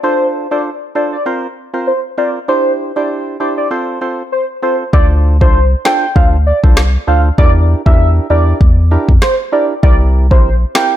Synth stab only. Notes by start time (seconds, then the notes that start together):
0.03 D4 F4 A4 C5
0.51 D4 F4 A4 C5
0.95 D4 F4 A4 C5
1.26 C4 F4 A#4 C5
1.74 C4 F4 A#4 C5
2.18 C4 F4 A#4 C5
2.48 D4 E4 G4 C5
2.96 D4 E4 G4 C5
3.40 D4 E4 G4 C5
3.71 C4 F4 A4 C5
4.01 C4 F4 A4 C5
4.62 C4 F4 A4 C5
4.93 D4 F4 A4 C5
5.41 D4 F4 A4 C5
5.85 D4 F4 A4 C5
6.15 D4 F4 A4 C5
6.63 D4 F4 A4 C5
7.07 D4 F4 A4 C5
7.38 D4 E4 G4 A#4
7.86 D4 E4 G4 A#4
8.30 D4 E4 G4 A#4
8.91 D4 E4 G4 A#4
9.52 D4 E4 G4 A#4
9.83 C4 E4 G4 A#4
10.31 C4 E4 G4 A#4
10.75 C4 E4 G4 A#4